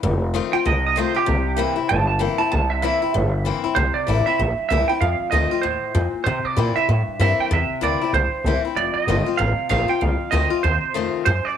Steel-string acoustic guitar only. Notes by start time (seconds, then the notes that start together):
0.03 F2
0.34 D#3 A3 C4 F4
0.53 C4 F4
0.66 C3
0.96 D#3 A3 C4 F4
1.15 C4 F4
1.26 C3
1.57 E3 A#3 C4 E4
1.76 C4 E4
1.89 G2
2.19 E3 A#3 C4 E4
2.38 C4 E4
2.52 C3
2.82 E3 A#3 C4 E4
3.02 C4 E4
3.14 G2
3.45 E3 A#3 C4 E4
3.64 C4 E4
3.76 C3
4.07 E3 A#3 C4 E4
4.27 C4 E4
4.39 G2
4.70 E3 A#3 C4 E4
4.89 C4 E4
5.01 F2
5.32 D#3 A3 C4 F4
5.51 C4 F4
5.63 A2
5.95 A#2
6.26 C3
6.56 E3 A#3 C4 E4
6.76 C4 E4
6.89 G2
7.20 E3 A#3 C4 E4
7.51 C3
7.81 E3 A#3 C4 E4
8.01 C4 E4
8.14 G2
8.46 E3 A#3 C4 E4
8.65 C4 E4
8.77 F2
9.08 D#3 A3 C4 F4
9.26 C4 F4
9.39 C3
9.69 D#3 A3 C4 F4
9.88 C4 F4
10.01 F2
10.32 D#3 A3 C4 F4
10.50 C4 F4
10.64 C3
10.94 D#3 A3 C4 F4
11.26 F#2